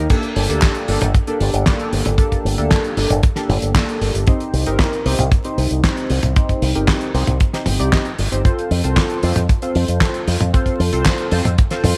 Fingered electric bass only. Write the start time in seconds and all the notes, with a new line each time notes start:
0.36 G1
0.49 D2
0.88 G1
1.01 G1
1.40 G1
1.53 G1
1.93 G1
2.06 G1
2.45 G1
2.58 D2
2.97 G1
3.10 G1
3.49 G1
3.62 G1
4.01 G1
4.14 G1
4.53 C2
4.66 G1
5.06 C2
5.19 C2
5.58 C2
5.71 C2
6.10 C2
6.23 C2
6.62 C2
6.75 G1
7.14 C2
7.27 C2
7.66 G1
7.80 C2
8.19 G1
8.32 G1
8.71 F2
8.84 C2
9.23 F2
9.36 F2
9.75 F2
9.88 F2
10.27 F2
10.41 F2
10.80 F2
10.93 C2
11.32 F2
11.45 F2
11.84 F2